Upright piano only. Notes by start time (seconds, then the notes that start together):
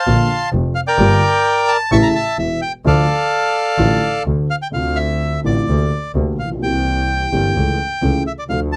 0.07 A#1 A#2 D3 F3 A#3 F4
0.53 F1 F2
0.99 G1 G2 D3 G3 A#3 F4
1.92 A1 A2 C#3 E3 A3 E4
2.38 E1 E2
2.85 D2 D3 F3 A3 F4
3.79 A1 A2 D3 F3 A3 F4
4.26 D2 D3
4.72 D2 D3 A3 C4 F4
5.44 A1 A2 D3 A3 C4 F4
5.69 D2 D3 A3 A#3 G4
6.15 D2 D3 A3 A#3 G4
6.44 A1
6.51 A#1
6.55 B1
6.61 C2 C3 E3 A#3 C4 G4
7.32 G1 G2 E3 A#3 C4 G4
7.56 C#2 C#3 E3 A3 C#4 A4
8.02 C#2 C#3 E3 A3 C#4 A4
8.49 D2 D3 F3 A3 D4 A4